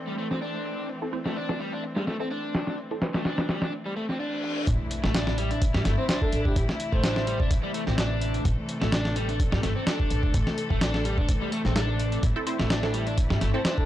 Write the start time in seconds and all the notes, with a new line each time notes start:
Already playing: E3 A3 C4 E4 A4 B4
0.07 G3
0.18 A3, closed hi-hat
0.31 C4, snare
0.42 D4, closed hi-hat
0.66 closed hi-hat
0.78 closed hi-hat
0.89 closed hi-hat
1.02 C4 E4 A4
1.13 C4 E4 C5, closed hi-hat
1.26 A3, snare
1.36 D4, closed hi-hat
1.49 C4 E4 A4, snare
1.60 G3, closed hi-hat
1.73 D4, closed hi-hat
1.84 closed hi-hat
1.96 G3, snare
2.07 A3, snare, closed hi-hat
2.20 C4 E4 A4
2.31 D4, closed hi-hat
2.55 snare, closed hi-hat
2.67 snare
2.78 closed hi-hat
2.91 C4 E4 A4, closed hi-hat
3.02 C4 E4 B4, snare, closed hi-hat
3.14 A3, snare, closed hi-hat
3.25 D4, snare, closed hi-hat
3.38 C4 E4 B4, snare, closed hi-hat
3.49 G3, snare, closed hi-hat
3.62 D4, snare, closed hi-hat
3.73 closed hi-hat, reverse cymbal
3.85 G3, closed hi-hat
3.96 A3, closed hi-hat
4.09 C4, snare
4.20 D4, closed hi-hat
4.44 closed hi-hat
4.56 closed hi-hat
4.67 A1 C3 E3 A3 E4, kick, closed hi-hat, impact
4.91 closed hi-hat
5.04 A1 A3, snare
5.15 D4, snare, closed hi-hat
5.27 snare
5.38 G3, closed hi-hat
5.51 D4, closed hi-hat
5.62 kick, closed hi-hat
5.74 A2 G3, snare
5.85 G1 A3, snare, closed hi-hat
5.98 C4 C5
6.09 D4 C5, snare, closed hi-hat
6.22 A4, kick
6.33 A1 A4, closed hi-hat
6.45 G4, kick
6.56 A1 G4, kick, closed hi-hat
6.69 snare
6.80 closed hi-hat
6.92 A1 A3 C5, kick
7.03 D4, snare, closed hi-hat
7.16 snare
7.27 G3, closed hi-hat
7.40 D4, kick
7.51 kick, closed hi-hat
7.63 G3
7.74 A3, closed hi-hat
7.87 A1 C4, snare
7.98 D4, snare, closed hi-hat
8.21 closed hi-hat
8.34 closed hi-hat
8.45 A1 A4, kick, closed hi-hat
8.69 closed hi-hat
8.82 A1 A3, snare
8.92 D4, snare, closed hi-hat
9.05 snare
9.16 G3, closed hi-hat
9.29 D4, closed hi-hat
9.40 kick, closed hi-hat
9.52 A2 G3, snare
9.63 G1 A3, snare, closed hi-hat
9.76 C4
9.87 D4, snare, closed hi-hat
10.00 kick
10.10 A1, closed hi-hat
10.23 kick
10.34 A1, kick, closed hi-hat
10.47 snare
10.58 closed hi-hat
10.70 A1 A3, kick
10.81 D4, snare, closed hi-hat
10.94 snare
11.05 G3, closed hi-hat
11.18 D4, kick
11.29 kick, closed hi-hat
11.41 G3
11.52 A3, closed hi-hat
11.65 A1 C4, snare
11.76 D4, snare, closed hi-hat
11.99 closed hi-hat
12.12 closed hi-hat
12.23 A1 E4, kick, closed hi-hat
12.36 C4 E4 A4
12.47 C4 E4 C5, closed hi-hat
12.59 A1 A3, snare
12.70 D4, snare, closed hi-hat
12.83 C4 E4 A4, snare
12.94 G3, closed hi-hat
13.07 D4, closed hi-hat
13.18 kick, closed hi-hat
13.30 A2 G3, snare
13.41 G1 A3, snare, closed hi-hat
13.54 C4 E4 A4 C5
13.65 D4 C5, snare, closed hi-hat
13.78 A4, kick